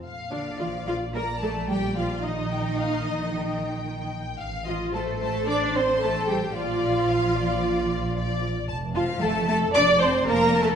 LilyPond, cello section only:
\new Staff \with { instrumentName = "Cello section" } { \time 4/4 \key bes \major \tempo 4 = 111 r8 d8 f8 f8 bes8 a8 g8 f8 | ees2.~ ees8 r8 | r8 f8 a8 a8 d'8 c'8 a8 g8 | f2.~ f8 r8 |
r8 f8 a8 a8 d'8 c'8 \tuplet 3/2 { bes4 a8 } | }